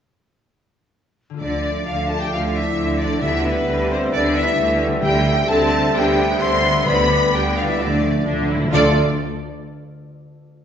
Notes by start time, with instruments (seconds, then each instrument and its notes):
1.30 harp D3 A3 F4
1.37 timpani D3, cello section D3, harp A4, trumpet section D5, flute D5, violin section D5
1.41 double bass section D2, trombone section F3 A3, french horn section D4, violin section D5
1.86 double bass section D2, cello section D3, french horn section F4, violin section F5, flute F5
2.08 french horn section A4, violin section A5, flute A5
2.19 french horn section G4, violin section G5, flute G5
2.31 double bass section D2, cello section D3, viola section A3, french horn section F4, flute F5, violin section F5
2.54 french horn section E4, violin section E5, flute E5
2.58 violin section E5
2.77 double bass section D2, cello section D3
2.99 french horn section D4, violin section D5, flute D5
3.03 harp D3, violin section D5
3.09 harp B3
3.13 harp E4
3.18 cello section D3, timpani D3, trombone section G3, viola section B3, french horn section E4, harp G4, violin section E5, trumpet section E5
3.23 double bass section D2, trombone section B3, flute E5, violin section E5
3.45 french horn section B3, violin section B4, flute B4
3.67 double bass section D2, cello section D3, viola section G3
3.89 french horn section C4, violin section C5, flute C5
4.11 double bass section D2, cello section D3, viola section B3, french horn section D4, violin section D5, flute D5
4.34 french horn section E4, violin section E5, flute E5
4.58 double bass section D2, cello section D3, viola section A3
4.86 harp D3
4.90 harp C4
4.95 harp E4
4.99 timpani D3, cello section D3, viola section G3, harp G4, french horn section G4, flute G5
5.03 double bass section D2, trombone section C3, violin section G5
5.47 double bass section D2, cello section D3, viola section C4, french horn section A4, flute A5, violin section A5
5.94 double bass section D2, cello section D3, viola section B3, french horn section G4, flute G5, violin section G5
6.39 double bass section D2, cello section D3, french horn section C5, flute C6, violin section C6
6.69 harp D3
6.74 harp B3
6.78 harp D4
6.82 timpani D3, harp G4, french horn section B4, trumpet section D5, flute B5
6.86 double bass section D2, cello section D3, trombone section G3 B3, violin section B5
7.32 double bass section D2, cello section D3, french horn section G4, flute G5, violin section G5
7.56 french horn section F4, violin section F5, flute F5
7.61 harp D3
7.66 harp A3, french horn section E4, violin section E5, flute E5
7.70 harp D4
7.74 cello section D3, french horn section D4, harp F4
7.79 double bass section D2, trombone section F3 A3, viola section A3, flute D5, violin section D5
7.87 timpani D3
7.95 timpani D3
8.11 timpani D3
8.19 timpani D3
8.26 double bass section D2, cello section D3, timpani D3, viola section D4
8.34 timpani D3
8.42 timpani D3
8.50 timpani D3, viola section E4
8.56 timpani D3
8.65 timpani D3
8.70 double bass section D2, cello section D2, harp D3 A3 D4 F4, timpani D3, trombone section F3 A3, french horn section D4, viola section F4, flute D5, violin section D5, trumpet section D5
8.75 viola section A4, harp D5